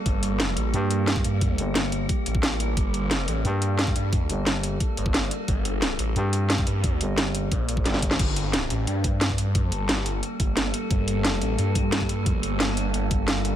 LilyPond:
<<
  \new Staff \with { instrumentName = "Synth drone" } { \time 4/4 \key g \minor \tempo 4 = 177 << { g'1~ | g'1 | a'1~ | a'1 |
c'1~ | c'1 | a'1~ | a'1~ |
a'1~ | a'1 | } \\ { <g bes>1~ | <g bes>1~ | <g bes>1~ | <g bes>1~ |
<g bes>1~ | <g bes>1 | <g bes>1~ | <g bes>1~ |
<g bes>1~ | <g bes>1 | } >> }
  \new Staff \with { instrumentName = "Detuned saw bass" } { \clef bass \time 4/4 \key g \minor g,,4. a,,8 r4. g,8~ | g,8 r2 a,,4. | g,,4. a,,8 r4. g,8~ | g,8 r2 g,,4 r8 |
g,,4. a,,8 r4. g,8~ | g,8 r4. bes,,4 r4 | g,,4. a,,8 g,4. g,8~ | g,8 g,,4. r8 g,,4 r8 |
g,,4. a,,8 g,4. g,8~ | g,8 g,,4. g,,2 | }
  \new Staff \with { instrumentName = "FM bass" } { \clef bass \time 4/4 \key g \minor r2 g,4. r8 | r8 g,,4. r2 | r2 g,4. r8 | r8 g,,4. r2 |
r2 g,4. r8 | r8 g,,4. r4 g,,4 | r1 | r1 |
r1 | r1 | }
  \new DrumStaff \with { instrumentName = "Drums" } \drummode { \time 4/4 <hh bd>8 hh8 <hh sn>8 hh8 hh8 hh8 <hh sn>16 bd16 hh8 | <hh bd>8 hh8 <hh sn>8 hh8 <hh bd>8 hh16 bd16 <hh sn>8 hh8 | <hh bd>8 hh8 <hh sn>8 hh8 hh8 hh8 <hh sn>16 bd16 hh8 | <hh bd>8 hh8 <hh sn>8 hh8 <hh bd>8 hh16 bd16 <hh sn>8 hh8 |
<hh bd>8 hh8 <hh sn>8 hh8 hh8 hh8 <hh sn>16 bd16 hh8 | <hh bd>8 hh8 <hh sn>8 hh8 <hh bd>8 hh16 bd16 <hh sn>16 sn16 <hh bd>16 sn16 | <cymc hh bd>8 hh8 <hh sn>8 hh8 hh8 <hh bd>8 <hh sn>16 bd16 hh8 | <hh bd>8 hh8 <hh sn>16 sn16 hh8 hh8 <hh bd>8 <hh sn>8 hh8 |
<hh bd>8 hh8 <hh sn>8 hh8 hh8 <hh bd>8 <hh sn>16 bd16 hh8 | <hh bd>8 hh8 <hh sn>16 sn16 hh8 hh8 <hh bd>8 <hh sn>8 hh8 | }
>>